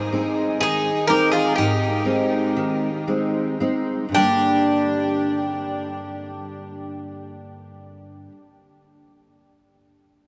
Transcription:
Already playing: G#2
0.12 G#3 C4 D#4
0.60 D#3 D#4 G#4
1.07 G#3 C4 D#4 G4 A#4
1.32 F4 G#4
1.56 G#2 D#4 G4
2.05 G#3 C4 D#4
2.57 D#3
3.08 G#3 C4 D#4
3.60 G#3 C4 D#4
4.09 G2 D3
4.14 G3 A#3 D4 G4
4.20 D4

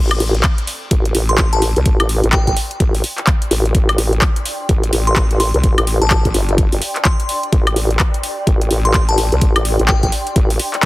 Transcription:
Already playing: A1 A4 D5 G5 C6
0.11 closed hi-hat, high woodblock
0.20 open hi-hat
0.35 closed hi-hat
0.43 kick, clap, closed hi-hat, high woodblock
0.58 closed hi-hat
0.67 open hi-hat
0.91 A1, kick, closed hi-hat
1.05 closed hi-hat
1.15 A1, open hi-hat
1.29 C6, closed hi-hat
1.38 A1 C6, kick, clap, closed hi-hat
1.53 A5, closed hi-hat
1.62 open hi-hat
1.76 C2, closed hi-hat
1.86 A1, kick, closed hi-hat
2.00 A1, closed hi-hat, high woodblock
2.09 open hi-hat
2.24 A1, closed hi-hat
2.33 G5, kick, clap, closed hi-hat, high woodblock
2.47 A1 G5, kick, closed hi-hat
2.57 open hi-hat
2.71 closed hi-hat
2.80 A1, kick, closed hi-hat
2.95 open hi-hat
3.04 open hi-hat
3.18 clap, closed hi-hat
3.27 kick, clap, closed hi-hat
3.42 closed hi-hat
3.51 A1, open hi-hat
3.65 closed hi-hat
3.75 A1, kick, closed hi-hat
3.89 closed hi-hat, high woodblock
3.98 open hi-hat
4.13 closed hi-hat
4.22 kick, clap, closed hi-hat, high woodblock
4.36 closed hi-hat
4.46 open hi-hat
4.69 A1, kick, closed hi-hat
4.83 closed hi-hat
4.93 A1, open hi-hat
5.07 C6, closed hi-hat
5.16 A1 C6, kick, clap, closed hi-hat
5.31 closed hi-hat
5.40 C6, open hi-hat
5.54 C2, closed hi-hat
5.64 A1, kick, closed hi-hat
5.78 A1, closed hi-hat, high woodblock
5.87 open hi-hat
6.01 A1 A5, closed hi-hat
6.10 A5, kick, clap, closed hi-hat, high woodblock
6.25 A1, kick, closed hi-hat
6.34 G1, open hi-hat
6.49 closed hi-hat
6.58 kick, closed hi-hat
6.72 G1, open hi-hat
6.82 open hi-hat
6.96 clap, closed hi-hat
7.05 C6, kick, clap, closed hi-hat
7.20 closed hi-hat
7.29 open hi-hat
7.43 closed hi-hat
7.53 A1, kick, closed hi-hat
7.67 closed hi-hat, high woodblock
7.76 open hi-hat
7.91 closed hi-hat
7.99 kick, clap, closed hi-hat, high woodblock
8.14 closed hi-hat
8.23 open hi-hat
8.47 A1, kick, closed hi-hat
8.61 closed hi-hat
8.71 A1, open hi-hat
8.85 C6, closed hi-hat
8.94 A1 C6, kick, clap, closed hi-hat
9.09 A5, closed hi-hat
9.18 open hi-hat
9.32 C2, closed hi-hat
9.41 A1, kick, closed hi-hat
9.56 A1, closed hi-hat, high woodblock
9.65 open hi-hat
9.79 A1, closed hi-hat
9.88 G5, kick, clap, closed hi-hat, high woodblock
10.03 A1 G5, kick, closed hi-hat
10.12 open hi-hat
10.27 closed hi-hat
10.36 A1, kick, closed hi-hat
10.50 open hi-hat
10.59 open hi-hat
10.74 clap, closed hi-hat

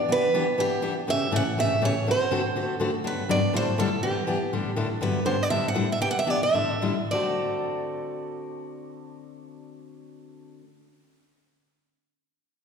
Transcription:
Already playing: D5
0.09 E3 B3 D4 G4 B4
0.34 E3 B3 D4 G4
0.58 E3 B3 D4 G4
0.82 E3 B3 D4 G4
1.07 A2 C#3 E3 A3 C#4 G4 E5
1.31 A2 C#3 E3 A3 C#4 G4
1.36 F#5
1.58 A2 C#3 E3 A3 C#4 G4 E5
1.82 A2 C#3 E3 A3 C#4 G4 C#5
2.06 D3 A3 C4 F#4 A4
2.11 C5
2.31 D3 A3 C4 F#4 A4
2.56 D3 A3 C4 F#4 A4
2.80 D3 A3 C4 F#4 A4
3.04 G2 D3 F#3 B3 D4 G4 B4
3.29 G2 D3 F#3 B3 D4 G4 D5
3.53 A2 D3 G3 D4 E4 A4 C5
3.78 A2 D3 G3 D4 E4 A4
4.03 E3 B3 D4 G4
4.27 E3 B3 D4 G4
4.53 A2 D3 G3 D4 E4 A4
4.76 A2 D3 G3 D4 E4 A4
5.01 G2 D3 F#3 B3 D4 G4 B4
5.25 G2 D3 F#3 B3 D4 G4 C5
5.43 D5
5.50 A2 D3 G3 D4 E4 A4 E5
5.68 F#5
5.75 A2 D3 G3 D4 E4 A4
5.92 E5
6.01 E3 B3 D4 G4 G5
6.11 F#5
6.19 E5
6.27 E3 B3 D4 G4 D5
6.43 E5
6.54 A2 D3 G3 D4 E4 A4
6.82 A2 D3 G3 D4 E4 A4
7.11 D3 A3 C4 F#4 A4 D5

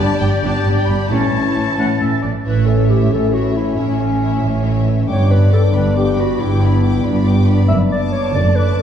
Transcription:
Already playing: G3 D4 G4 D5 G6
0.00 B3 A5
0.21 G1 G2 G3 B3 G5
0.43 G1 G2 B3 D4 A5
0.66 G1 G2 B3
0.78 G5
0.88 G1 G2 G3 B3 B5
1.10 A1 A2 E3 C#4 E4 A4 C#5 A5 A6
1.33 A1 A2 A3 C#4
1.55 A1 A2 E3 C#4
1.78 A1 A2 C#4 F#5
2.00 A1 A2 A3 C#4 E5
2.22 A1 A2 E3 C#4 D5
2.45 A1 A2 E3 C#4 E4 B4 C#5 E5
2.66 C#4 A4 C#5 E5
2.89 E4 G4 C#5 E5
3.10 A1 A2 C#4 A4 C#5 E5
3.34 E4 F#4 C#5 E5
3.55 C#4 E4 C#5 E5
3.77 A1 A2 C#4 E4 C#5 E5
3.99 C#4 C#5 E5
4.22 E4 C#5 E5
4.43 A1 A2 C#4 C#5 E5
4.64 E4 C#5 E5
4.86 C#4 C#5 E5
5.08 G1 G2 B3 D4 C#5 G5 D6
5.30 D4 B4 D5 B5
5.53 B3 A4 G5 D6
5.74 G1 G2 D4 B4 D5 B5
5.97 B3 G4 G5 D6
6.18 D4 F#4 D5 B5
6.39 G1 G2 B3 E4 G5 D6
6.62 D4 D5 B5
6.83 B3 G5 D6
7.04 G1 G2 D4 D5 B5
7.26 B3 G5 D6
7.48 D4 D5 B5
7.68 F#1 F#2 D4 E5
7.92 D4 D5 A5 D6
8.12 C#5
8.34 F#1 F#2 A3 D5
8.56 D4 B4 A5 D6

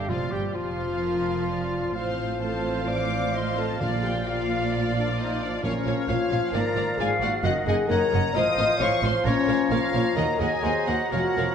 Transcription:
Already playing: G4 F5
0.08 F1 F2 A#2 F3 F4 D5 F5
0.31 G1 G2 G3 G4 G5
0.54 F1 F2 F3 F4 C5 F5
1.02 A#4
1.49 D5
1.95 A1 A2 F3 C4 F4 C5 F5
2.41 C4 F4 A4 C5 F5 A5
2.87 D5 F5 D6
3.34 C4 F4 C5 D#5 F5 C6
3.58 A4 A5
3.80 A#1 A#2 A#3 F4 D5 F5
4.03 G4 G5
4.26 A#3 F4 D5 F5
4.72 D5
4.95 D4 D5
5.18 D#4 C5 D#5
5.40 D4 D5
5.62 A#1 A#2 F3 A#3 C#4 F4 A#4 C#5 F5
5.86 A#1 A#2 A#3 F4 C#5 F5
6.08 A#1 A#2 A#3 F4 C#5 F5
6.31 A#1 A#2 A#3 F4 C#5 F5
6.53 G#1 G#2 A#3 F4 A#4 D5 F5 A#5
6.76 G#1 G#2 A#3 F4 D5 F5
6.98 G#1 G#2 A#3 F4 G#4 D5 F5 G#5
7.20 G#1 G#2 A#3 F4 F#4 D5 F5 F#5
7.43 F#1 F#2 D#3 A#3 D#4 F#4 D#5 F#5
7.66 F#1 F#2 A#3 D#4 G#4 D#5 F#5 G#5
7.89 F#1 F#2 A#3 D#4 A#4 C#5 D#5 F#5 A#5
8.11 F#1 F#2 A#3 D#4 D#5 F#5
8.35 A1 A2 F3 C4 F4 C5 D#5 F5 D#6
8.57 A1 A2 C4 F4 C5 F5
8.78 A1 A2 C4 F4 C5 C#5 F5 C#6
9.02 A1 A2 C4 F4 C5 F5 C6
9.25 A#1 A#2 A#3 C#4 A#4 C#5 F5 A#5
9.47 A#1 A#2 A#3 A#4 C#5 F5
9.70 A#1 A#2 A#3 F4 A#4 C#5 F5
9.93 A#1 A#2 A#3 A#4 C#5 F5
10.16 D#2 F#3 A#3 A#4 D#5 F#5 A#5
10.39 D#2 A#3 G#4 A#4 D#5 F#5 G#5
10.63 D#2 A#3 A#4 C5 D#5 F#5
10.87 D#2 A#3 F#4 A#4 D#5 F#5
11.11 F1 F2 F3 A#3 F#4 A#4 C#5 F5 F#5
11.36 F1 F2 A#3 A#4 C#5 F5

